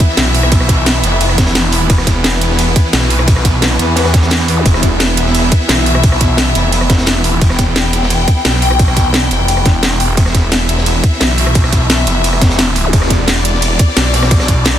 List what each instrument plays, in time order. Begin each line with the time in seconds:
Already playing: string section E3 B3 E4 E5
0.00 kick, closed hi-hat, ride
0.09 snare
0.17 detuned saw bass B1, snare, closed hi-hat, open hi-hat, ride
0.26 snare
0.34 closed hi-hat, open hi-hat, ride
0.43 cross-stick, closed hi-hat
0.52 kick, closed hi-hat, ride
0.60 cross-stick, snare
0.68 kick, snare, closed hi-hat, ride
0.86 snare, closed hi-hat, ride
1.03 detuned saw bass F1, snare, closed hi-hat, ride
1.20 closed hi-hat, ride
1.29 cross-stick
1.38 kick, snare, closed hi-hat, ride
1.47 snare, closed hi-hat
1.55 snare, closed hi-hat, ride
1.64 detuned saw bass E1
1.72 closed hi-hat, open hi-hat, ride
1.90 detuned saw bass E1, string section B4, kick, closed hi-hat, ride
1.98 cross-stick, snare
2.07 kick, snare, closed hi-hat, ride
2.24 snare, closed hi-hat, ride
2.41 closed hi-hat, ride
2.51 snare
2.59 closed hi-hat, ride
2.76 kick, closed hi-hat, ride
2.84 snare
2.93 detuned saw bass B1, snare, closed hi-hat, open hi-hat, ride
3.02 snare
3.10 closed hi-hat, open hi-hat, ride
3.19 cross-stick, closed hi-hat
3.28 kick, closed hi-hat, ride
3.36 cross-stick, snare
3.45 kick, snare, closed hi-hat, ride
3.62 snare, closed hi-hat, ride
3.79 detuned saw bass E2, snare, closed hi-hat, ride
3.96 snare, closed hi-hat, ride
4.05 cross-stick, snare, closed hi-hat
4.14 kick, snare, closed hi-hat, ride
4.22 snare, closed hi-hat
4.30 snare, closed hi-hat, ride
4.40 snare, closed hi-hat
4.48 closed hi-hat, open hi-hat, ride
4.57 zap
4.66 detuned saw bass E1, string section E5, kick, closed hi-hat, ride
4.74 cross-stick, snare
4.82 kick, snare, closed hi-hat, ride
5.00 snare, closed hi-hat, ride
5.17 closed hi-hat, ride
5.26 snare
5.34 closed hi-hat, ride
5.51 kick, closed hi-hat, ride
5.60 snare
5.68 detuned saw bass B1, snare, closed hi-hat, open hi-hat, ride
5.78 snare
5.86 closed hi-hat, open hi-hat, ride
5.94 cross-stick, closed hi-hat
6.04 kick, closed hi-hat, ride
6.12 cross-stick, snare
6.20 kick, snare, closed hi-hat, ride
6.37 snare, closed hi-hat, ride
6.55 detuned saw bass F1, snare, closed hi-hat, ride
6.72 closed hi-hat, ride
6.81 cross-stick
6.90 kick, snare, closed hi-hat, ride
6.98 snare, closed hi-hat
7.06 snare, closed hi-hat, ride
7.15 detuned saw bass E1
7.24 closed hi-hat, open hi-hat, ride
7.41 detuned saw bass E1, string section G5, kick, closed hi-hat, ride
7.50 cross-stick, snare
7.58 kick, snare, closed hi-hat, ride
7.76 snare, closed hi-hat, ride
7.93 closed hi-hat, ride
8.03 snare
8.10 closed hi-hat, ride
8.28 kick, closed hi-hat, ride
8.36 snare
8.45 detuned saw bass B1, snare, closed hi-hat, open hi-hat, ride
8.54 snare
8.62 closed hi-hat, open hi-hat, ride
8.71 cross-stick, closed hi-hat
8.79 kick, closed hi-hat, ride
8.88 cross-stick, snare
8.97 kick, snare, closed hi-hat, ride
9.13 snare, closed hi-hat, ride
9.31 detuned saw bass F1, snare, closed hi-hat, ride
9.48 closed hi-hat, ride
9.57 cross-stick
9.66 detuned saw bass E1, kick, snare, closed hi-hat, ride
9.83 snare, closed hi-hat, ride
10.00 closed hi-hat, open hi-hat, ride
10.17 detuned saw bass E1, string section E5, kick, closed hi-hat, ride
10.26 cross-stick, snare
10.35 kick, snare, closed hi-hat, ride
10.52 snare, closed hi-hat, ride
10.69 closed hi-hat, ride
10.77 snare
10.86 closed hi-hat, ride
11.04 kick, closed hi-hat, ride
11.12 snare
11.20 detuned saw bass B1, snare, closed hi-hat, open hi-hat, ride
11.30 snare
11.38 closed hi-hat, open hi-hat, ride
11.46 cross-stick, closed hi-hat
11.55 kick, closed hi-hat, ride
11.64 cross-stick, snare
11.73 kick, snare, closed hi-hat, ride
11.90 snare, closed hi-hat, ride
12.07 detuned saw bass F1, snare, closed hi-hat, ride
12.24 closed hi-hat, ride
12.33 cross-stick
12.41 kick, snare, closed hi-hat, ride
12.50 snare, closed hi-hat
12.58 snare, closed hi-hat, ride
12.75 closed hi-hat, open hi-hat, ride
12.85 zap
12.93 detuned saw bass E1, string section D5, kick, closed hi-hat, ride
13.02 cross-stick, snare
13.10 kick, snare, closed hi-hat, ride
13.27 snare, closed hi-hat, ride
13.45 closed hi-hat, ride
13.54 snare
13.62 closed hi-hat, ride
13.79 kick, closed hi-hat, ride
13.88 snare
13.96 detuned saw bass B1, snare, closed hi-hat, open hi-hat, ride
14.05 snare
14.13 snare, closed hi-hat, open hi-hat, ride
14.23 cross-stick, snare, closed hi-hat
14.31 kick, snare, closed hi-hat, ride
14.40 cross-stick, snare, closed hi-hat
14.48 kick, snare, closed hi-hat, ride
14.65 snare, closed hi-hat, ride